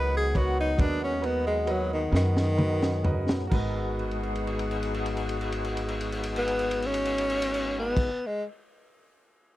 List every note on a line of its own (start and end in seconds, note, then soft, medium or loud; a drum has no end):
0.00 0.74 C#2 medium
0.00 3.48 F#3 medium
0.00 3.48 G#3 medium
0.00 3.36 B3 medium
0.00 3.48 B3 medium
0.00 3.48 D#4 medium
0.00 0.23 F#4 medium
0.00 3.36 G#4 medium
0.00 0.24 A#4 soft
0.00 0.14 B4 medium
0.00 0.24 B4 medium
0.00 0.24 D#5 medium
0.00 3.36 F#5 medium
0.17 0.39 G#4 medium
0.34 0.67 F#4 medium
0.34 0.56 F#4 medium
0.34 0.67 A#4 medium
0.34 0.68 B4 medium
0.34 0.68 C#5 medium
0.34 kick medium
0.34 ride medium
0.61 0.83 D#4 medium
0.77 2.08 D#2 medium
0.77 1.01 D4 medium
0.77 1.11 F#4 medium
0.77 1.12 A#4 medium
0.77 1.12 B4 medium
0.77 1.12 D#5 medium
0.77 kick loud
0.77 ride medium
1.04 1.27 C#4 medium
1.21 1.55 F#4 medium
1.21 1.55 A#4 soft
1.21 1.56 B4 soft
1.21 1.56 D#5 medium
1.21 ride medium
1.25 1.45 B3 medium
1.47 1.72 G#3 medium
1.66 2.00 F#4 medium
1.66 2.01 A#4 medium
1.66 2.01 B4 medium
1.66 2.01 D#5 medium
1.66 ride medium
1.71 1.90 F#3 medium
1.93 2.13 D#3 medium
2.12 3.47 F#2 medium
2.12 2.46 F#4 medium
2.12 2.46 A#4 medium
2.12 2.46 B4 medium
2.12 2.47 D#5 medium
2.12 snare medium
2.16 3.49 D#3 loud
2.37 snare medium
2.57 2.92 F#4 medium
2.57 2.92 A#4 medium
2.57 2.92 B4 medium
2.57 2.93 D#5 medium
2.57 mid tom medium
2.82 snare medium
3.04 3.39 F#4 medium
3.04 3.39 A#4 medium
3.04 3.40 B4 medium
3.04 3.40 D#5 medium
3.04 floor tom medium
3.29 snare medium
3.47 8.11 G#3 medium
3.47 8.11 B3 medium
3.47 8.09 F#4 medium
3.47 8.10 A#4 medium
3.51 8.11 G#1 medium
3.51 8.11 D#4 medium
3.51 8.11 F#4 medium
3.51 8.12 F#4 medium
3.51 8.12 G#4 medium
3.51 8.12 B4 medium
3.51 8.13 D#5 medium
3.51 kick loud
3.51 crash medium
3.99 crash soft
4.11 ride soft
4.23 crash soft
4.35 ride medium
4.47 crash medium
4.59 ride medium
4.71 crash medium
4.83 ride medium
4.94 crash medium
5.06 ride medium
5.17 crash medium
5.29 ride medium
5.41 crash medium
5.52 ride medium
5.64 crash medium
5.77 ride medium
5.88 crash medium
6.01 ride medium
6.12 crash medium
6.24 ride medium
6.36 6.88 B3 loud
6.36 crash medium
6.48 ride medium
6.59 crash medium
6.71 ride medium
6.82 7.79 C#4 medium
6.82 crash medium
6.94 ride medium
7.05 crash medium
7.18 ride medium
7.30 crash medium
7.42 ride medium
7.54 crash medium
7.79 8.28 B3 medium
7.97 kick loud
7.97 crash medium
8.26 8.43 G#3 medium